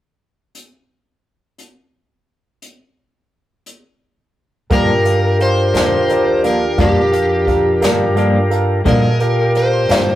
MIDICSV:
0, 0, Header, 1, 7, 480
1, 0, Start_track
1, 0, Key_signature, -2, "minor"
1, 0, Tempo, 691882
1, 383, Time_signature, 12, 3, 24, 8
1, 7043, End_track
2, 0, Start_track
2, 0, Title_t, "Electric slide guitar"
2, 0, Program_c, 0, 29
2, 3281, Note_on_c, 0, 70, 83
2, 3724, Note_off_c, 0, 70, 0
2, 3763, Note_on_c, 0, 72, 89
2, 4445, Note_off_c, 0, 72, 0
2, 4485, Note_on_c, 0, 70, 69
2, 4720, Note_on_c, 0, 67, 65
2, 4721, Note_off_c, 0, 70, 0
2, 5644, Note_off_c, 0, 67, 0
2, 6162, Note_on_c, 0, 70, 84
2, 6605, Note_off_c, 0, 70, 0
2, 6641, Note_on_c, 0, 72, 90
2, 7043, Note_off_c, 0, 72, 0
2, 7043, End_track
3, 0, Start_track
3, 0, Title_t, "Grand piano"
3, 0, Program_c, 1, 0
3, 3259, Note_on_c, 1, 69, 66
3, 3262, Note_on_c, 1, 70, 56
3, 3268, Note_on_c, 1, 77, 64
3, 3441, Note_off_c, 1, 69, 0
3, 3443, Note_off_c, 1, 70, 0
3, 3445, Note_off_c, 1, 77, 0
3, 3497, Note_on_c, 1, 69, 43
3, 3501, Note_on_c, 1, 70, 40
3, 3504, Note_on_c, 1, 77, 44
3, 3680, Note_off_c, 1, 69, 0
3, 3682, Note_off_c, 1, 70, 0
3, 3684, Note_off_c, 1, 77, 0
3, 3738, Note_on_c, 1, 69, 39
3, 3740, Note_on_c, 1, 70, 37
3, 3747, Note_on_c, 1, 77, 45
3, 3921, Note_off_c, 1, 69, 0
3, 3922, Note_off_c, 1, 70, 0
3, 3925, Note_off_c, 1, 77, 0
3, 3982, Note_on_c, 1, 69, 46
3, 3983, Note_on_c, 1, 70, 44
3, 3991, Note_on_c, 1, 77, 48
3, 4163, Note_off_c, 1, 69, 0
3, 4163, Note_off_c, 1, 70, 0
3, 4167, Note_off_c, 1, 77, 0
3, 4224, Note_on_c, 1, 69, 49
3, 4226, Note_on_c, 1, 70, 47
3, 4234, Note_on_c, 1, 74, 54
3, 4404, Note_off_c, 1, 69, 0
3, 4405, Note_off_c, 1, 70, 0
3, 4409, Note_off_c, 1, 74, 0
3, 4459, Note_on_c, 1, 69, 46
3, 4464, Note_on_c, 1, 70, 45
3, 4469, Note_on_c, 1, 77, 58
3, 4641, Note_off_c, 1, 69, 0
3, 4644, Note_off_c, 1, 70, 0
3, 4646, Note_off_c, 1, 77, 0
3, 4697, Note_on_c, 1, 69, 52
3, 4702, Note_on_c, 1, 70, 46
3, 4703, Note_on_c, 1, 77, 55
3, 4880, Note_off_c, 1, 69, 0
3, 4883, Note_off_c, 1, 70, 0
3, 4884, Note_off_c, 1, 77, 0
3, 4934, Note_on_c, 1, 69, 48
3, 4938, Note_on_c, 1, 70, 45
3, 4942, Note_on_c, 1, 77, 52
3, 5119, Note_off_c, 1, 69, 0
3, 5121, Note_off_c, 1, 70, 0
3, 5123, Note_off_c, 1, 77, 0
3, 5175, Note_on_c, 1, 69, 48
3, 5181, Note_on_c, 1, 70, 53
3, 5184, Note_on_c, 1, 77, 58
3, 5360, Note_off_c, 1, 69, 0
3, 5362, Note_off_c, 1, 70, 0
3, 5364, Note_off_c, 1, 77, 0
3, 5416, Note_on_c, 1, 69, 63
3, 5420, Note_on_c, 1, 70, 55
3, 5425, Note_on_c, 1, 77, 59
3, 5600, Note_off_c, 1, 69, 0
3, 5602, Note_off_c, 1, 70, 0
3, 5604, Note_off_c, 1, 77, 0
3, 5652, Note_on_c, 1, 69, 60
3, 5659, Note_on_c, 1, 70, 51
3, 5661, Note_on_c, 1, 77, 68
3, 5838, Note_off_c, 1, 69, 0
3, 5842, Note_off_c, 1, 70, 0
3, 5843, Note_off_c, 1, 77, 0
3, 5897, Note_on_c, 1, 69, 66
3, 5898, Note_on_c, 1, 70, 59
3, 5904, Note_on_c, 1, 77, 67
3, 6081, Note_off_c, 1, 69, 0
3, 6081, Note_off_c, 1, 70, 0
3, 6084, Note_off_c, 1, 77, 0
3, 6137, Note_on_c, 1, 69, 62
3, 6141, Note_on_c, 1, 70, 54
3, 6145, Note_on_c, 1, 77, 68
3, 6321, Note_off_c, 1, 69, 0
3, 6323, Note_off_c, 1, 70, 0
3, 6324, Note_off_c, 1, 77, 0
3, 6378, Note_on_c, 1, 69, 47
3, 6381, Note_on_c, 1, 70, 45
3, 6388, Note_on_c, 1, 77, 50
3, 6561, Note_off_c, 1, 69, 0
3, 6562, Note_off_c, 1, 70, 0
3, 6566, Note_off_c, 1, 77, 0
3, 6617, Note_on_c, 1, 69, 42
3, 6624, Note_on_c, 1, 70, 37
3, 6627, Note_on_c, 1, 77, 49
3, 6801, Note_off_c, 1, 69, 0
3, 6804, Note_off_c, 1, 70, 0
3, 6806, Note_off_c, 1, 77, 0
3, 6859, Note_on_c, 1, 69, 43
3, 6867, Note_on_c, 1, 70, 46
3, 6869, Note_on_c, 1, 77, 49
3, 7042, Note_off_c, 1, 69, 0
3, 7043, Note_off_c, 1, 70, 0
3, 7043, Note_off_c, 1, 77, 0
3, 7043, End_track
4, 0, Start_track
4, 0, Title_t, "Tonewheel organ"
4, 0, Program_c, 2, 16
4, 3264, Note_on_c, 2, 70, 67
4, 3267, Note_on_c, 2, 62, 63
4, 3269, Note_on_c, 2, 65, 59
4, 3269, Note_on_c, 2, 67, 65
4, 6117, Note_off_c, 2, 70, 0
4, 6119, Note_off_c, 2, 62, 0
4, 6119, Note_off_c, 2, 67, 0
4, 6120, Note_off_c, 2, 65, 0
4, 6140, Note_on_c, 2, 66, 62
4, 6142, Note_on_c, 2, 70, 56
4, 6142, Note_on_c, 2, 75, 55
4, 6143, Note_on_c, 2, 68, 61
4, 6381, Note_off_c, 2, 70, 0
4, 6382, Note_off_c, 2, 66, 0
4, 6383, Note_off_c, 2, 75, 0
4, 6384, Note_off_c, 2, 68, 0
4, 6386, Note_on_c, 2, 74, 56
4, 6389, Note_on_c, 2, 67, 62
4, 6389, Note_on_c, 2, 70, 67
4, 6391, Note_on_c, 2, 65, 60
4, 7043, Note_off_c, 2, 65, 0
4, 7043, Note_off_c, 2, 67, 0
4, 7043, Note_off_c, 2, 70, 0
4, 7043, Note_off_c, 2, 74, 0
4, 7043, End_track
5, 0, Start_track
5, 0, Title_t, "Clean electric guitar"
5, 0, Program_c, 3, 27
5, 3264, Note_on_c, 3, 43, 56
5, 3271, Note_on_c, 3, 53, 69
5, 3274, Note_on_c, 3, 58, 66
5, 3281, Note_on_c, 3, 62, 62
5, 3408, Note_off_c, 3, 43, 0
5, 3411, Note_off_c, 3, 53, 0
5, 3413, Note_off_c, 3, 58, 0
5, 3416, Note_off_c, 3, 62, 0
5, 3980, Note_on_c, 3, 62, 43
5, 3990, Note_on_c, 3, 58, 35
5, 4000, Note_on_c, 3, 53, 33
5, 4126, Note_off_c, 3, 62, 0
5, 4131, Note_off_c, 3, 58, 0
5, 4136, Note_off_c, 3, 53, 0
5, 4460, Note_on_c, 3, 62, 57
5, 4471, Note_on_c, 3, 58, 43
5, 4482, Note_on_c, 3, 53, 41
5, 4606, Note_off_c, 3, 62, 0
5, 4611, Note_off_c, 3, 58, 0
5, 4617, Note_off_c, 3, 53, 0
5, 4709, Note_on_c, 3, 43, 68
5, 4712, Note_on_c, 3, 53, 72
5, 4718, Note_on_c, 3, 58, 67
5, 4721, Note_on_c, 3, 62, 79
5, 4850, Note_off_c, 3, 43, 0
5, 4852, Note_off_c, 3, 53, 0
5, 4855, Note_off_c, 3, 58, 0
5, 4856, Note_off_c, 3, 62, 0
5, 5428, Note_on_c, 3, 62, 55
5, 5438, Note_on_c, 3, 58, 43
5, 5450, Note_on_c, 3, 53, 44
5, 5570, Note_off_c, 3, 62, 0
5, 5575, Note_off_c, 3, 58, 0
5, 5581, Note_off_c, 3, 53, 0
5, 5655, Note_on_c, 3, 43, 59
5, 5667, Note_on_c, 3, 53, 57
5, 5676, Note_on_c, 3, 58, 66
5, 5679, Note_on_c, 3, 62, 64
5, 5804, Note_off_c, 3, 43, 0
5, 5810, Note_off_c, 3, 53, 0
5, 5814, Note_off_c, 3, 58, 0
5, 5816, Note_off_c, 3, 62, 0
5, 6136, Note_on_c, 3, 43, 65
5, 6143, Note_on_c, 3, 53, 75
5, 6144, Note_on_c, 3, 58, 67
5, 6149, Note_on_c, 3, 62, 69
5, 6284, Note_off_c, 3, 43, 0
5, 6288, Note_off_c, 3, 53, 0
5, 6288, Note_off_c, 3, 58, 0
5, 6291, Note_off_c, 3, 62, 0
5, 6861, Note_on_c, 3, 62, 44
5, 6874, Note_on_c, 3, 58, 39
5, 6881, Note_on_c, 3, 53, 38
5, 7007, Note_off_c, 3, 62, 0
5, 7013, Note_off_c, 3, 58, 0
5, 7017, Note_off_c, 3, 53, 0
5, 7043, End_track
6, 0, Start_track
6, 0, Title_t, "Upright bass"
6, 0, Program_c, 4, 32
6, 3264, Note_on_c, 4, 43, 72
6, 3962, Note_off_c, 4, 43, 0
6, 3980, Note_on_c, 4, 39, 75
6, 4680, Note_off_c, 4, 39, 0
6, 4704, Note_on_c, 4, 41, 82
6, 5403, Note_off_c, 4, 41, 0
6, 5428, Note_on_c, 4, 43, 79
6, 6124, Note_off_c, 4, 43, 0
6, 6146, Note_on_c, 4, 46, 81
6, 6844, Note_off_c, 4, 46, 0
6, 6863, Note_on_c, 4, 43, 85
6, 7043, Note_off_c, 4, 43, 0
6, 7043, End_track
7, 0, Start_track
7, 0, Title_t, "Drums"
7, 381, Note_on_c, 9, 42, 50
7, 450, Note_off_c, 9, 42, 0
7, 1099, Note_on_c, 9, 42, 44
7, 1168, Note_off_c, 9, 42, 0
7, 1819, Note_on_c, 9, 42, 45
7, 1888, Note_off_c, 9, 42, 0
7, 2541, Note_on_c, 9, 42, 59
7, 2610, Note_off_c, 9, 42, 0
7, 3265, Note_on_c, 9, 36, 96
7, 3265, Note_on_c, 9, 42, 68
7, 3334, Note_off_c, 9, 36, 0
7, 3335, Note_off_c, 9, 42, 0
7, 3506, Note_on_c, 9, 42, 58
7, 3575, Note_off_c, 9, 42, 0
7, 3748, Note_on_c, 9, 42, 51
7, 3817, Note_off_c, 9, 42, 0
7, 3986, Note_on_c, 9, 42, 69
7, 4000, Note_on_c, 9, 38, 94
7, 4055, Note_off_c, 9, 42, 0
7, 4070, Note_off_c, 9, 38, 0
7, 4227, Note_on_c, 9, 42, 52
7, 4296, Note_off_c, 9, 42, 0
7, 4467, Note_on_c, 9, 42, 57
7, 4537, Note_off_c, 9, 42, 0
7, 4705, Note_on_c, 9, 42, 69
7, 4706, Note_on_c, 9, 36, 92
7, 4774, Note_off_c, 9, 42, 0
7, 4775, Note_off_c, 9, 36, 0
7, 4947, Note_on_c, 9, 42, 53
7, 5017, Note_off_c, 9, 42, 0
7, 5185, Note_on_c, 9, 36, 62
7, 5187, Note_on_c, 9, 42, 54
7, 5255, Note_off_c, 9, 36, 0
7, 5257, Note_off_c, 9, 42, 0
7, 5426, Note_on_c, 9, 42, 78
7, 5440, Note_on_c, 9, 38, 104
7, 5495, Note_off_c, 9, 42, 0
7, 5510, Note_off_c, 9, 38, 0
7, 5666, Note_on_c, 9, 42, 53
7, 5735, Note_off_c, 9, 42, 0
7, 5905, Note_on_c, 9, 42, 56
7, 5975, Note_off_c, 9, 42, 0
7, 6143, Note_on_c, 9, 42, 69
7, 6145, Note_on_c, 9, 36, 77
7, 6213, Note_off_c, 9, 42, 0
7, 6214, Note_off_c, 9, 36, 0
7, 6383, Note_on_c, 9, 42, 55
7, 6453, Note_off_c, 9, 42, 0
7, 6625, Note_on_c, 9, 42, 50
7, 6695, Note_off_c, 9, 42, 0
7, 6862, Note_on_c, 9, 42, 60
7, 6876, Note_on_c, 9, 38, 99
7, 6931, Note_off_c, 9, 42, 0
7, 6946, Note_off_c, 9, 38, 0
7, 7043, End_track
0, 0, End_of_file